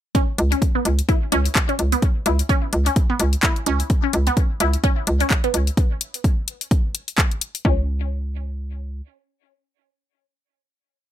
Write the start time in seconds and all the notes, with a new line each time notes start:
0.15 C#4, kick, closed hi-hat
0.38 C#2, closed hi-hat
0.52 C#4, closed hi-hat
0.62 kick, closed hi-hat
0.75 B3
0.85 C#2, closed hi-hat
0.99 closed hi-hat
1.09 E4, kick, closed hi-hat
1.32 C#2 C#4, closed hi-hat
1.46 closed hi-hat
1.55 kick, clap, closed hi-hat
1.69 C#4, closed hi-hat
1.79 C#2, closed hi-hat
1.92 B3, closed hi-hat
2.02 kick, closed hi-hat
2.26 C#2 E4, closed hi-hat
2.39 closed hi-hat
2.49 C#4, kick, closed hi-hat
2.73 C#2, closed hi-hat
2.86 C#4, closed hi-hat
2.96 kick, closed hi-hat
3.10 B3
3.20 C#2, closed hi-hat
3.33 closed hi-hat
3.43 E4, kick, clap, closed hi-hat
3.56 closed hi-hat
3.66 C#2 C#4, closed hi-hat
3.80 closed hi-hat
3.90 kick, closed hi-hat
4.03 C#4
4.13 C#2, closed hi-hat
4.27 B3, closed hi-hat
4.37 kick, closed hi-hat
4.60 C#2 E4, closed hi-hat
4.73 closed hi-hat
4.84 C#4, kick, closed hi-hat
5.07 C#2, closed hi-hat
5.20 C#4, closed hi-hat
5.30 kick, clap, closed hi-hat
5.44 B3, closed hi-hat
5.54 C#2, closed hi-hat
5.67 closed hi-hat
5.77 kick, closed hi-hat
6.01 closed hi-hat
6.14 closed hi-hat
6.24 kick, closed hi-hat
6.48 closed hi-hat
6.61 closed hi-hat
6.71 kick, closed hi-hat
6.95 closed hi-hat
7.08 closed hi-hat
7.18 kick, clap, closed hi-hat
7.31 closed hi-hat
7.41 closed hi-hat
7.55 closed hi-hat
7.65 C#2 C#4, kick